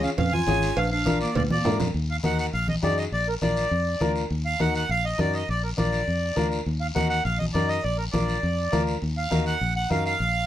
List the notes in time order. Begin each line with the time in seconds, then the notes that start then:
0.03 C#4 F5, short guiro
0.18 F2 C#4 F5, cowbell, low conga, long guiro
0.33 F4 G#5, high conga
0.47 G#1 C#4 F4 G#4, high conga, short guiro
0.62 short guiro
0.77 A#1 D4 F5, cowbell, long guiro
0.91 D4 F5
1.05 D4 F4 A#4, high conga, short guiro
1.21 A#3 D5, short guiro
1.35 D2 A#3 D5, cowbell, low conga, long guiro
1.50 A#2 A#3 D5, high conga
1.64 G#2 D4 F4 A#4, low conga, low timbale, short guiro
1.80 F2, low conga, short guiro
1.94 D#2, long guiro
2.10 F5
2.23 D#2 D#4 F#4 A#4 F#5, high conga, short guiro
2.39 F#5, short guiro
2.53 A#1 F5, long guiro
2.68 D#5, high conga
2.83 F#2 D#4 F#4 G#4 D5, high conga, short guiro
2.98 D#5, short guiro
3.12 A#1 D5, long guiro
3.28 A#4
3.41 A#1 D4 F4 A#4 D5, high conga, short guiro
3.57 short guiro
3.71 F2, long guiro
4.00 D2 D4 F4 A#4, high conga, short guiro
4.16 short guiro
4.31 D#2, long guiro
4.46 F5
4.60 D#2 D#4 F#4 A#4 F#5, high conga, short guiro
4.75 F#5, short guiro
4.89 A#1 F5, long guiro
5.05 D#5
5.18 F#2 D#4 F#4 A#4 D5, high conga, short guiro
5.34 D#5, short guiro
5.49 A#1 D5, long guiro
5.64 A#4
5.77 A#1 D4 F4 A#4 D5, high conga, short guiro
5.93 short guiro
6.08 F2, long guiro
6.36 D2 D4 F4 A#4, high conga, short guiro
6.52 short guiro
6.66 D#2, long guiro
6.80 F5
6.95 D#2 D#4 F#4 A#4 F#5, high conga, short guiro
7.09 F#5, short guiro
7.24 A#1 F5, long guiro
7.39 D#5, high conga
7.53 F#2 D#4 F#4 A#4 D5, high conga, short guiro
7.68 D#5, short guiro
7.83 A#1 D5, long guiro
7.98 A#4
8.12 A#1 D4 F4 A#4 D5, high conga, short guiro
8.28 short guiro
8.43 F2, long guiro
8.72 D2 D4 F4 A#4, high conga, short guiro
8.87 short guiro
9.02 D#2, long guiro
9.17 F5
9.31 D#2 D#4 F#4 A#4, high conga, short guiro
9.46 F#5, short guiro
9.61 A#1, long guiro
9.76 F#5
9.90 F#2 D#4 F#4 A#4 F5, high conga, short guiro
10.06 F5, short guiro
10.20 A#1, long guiro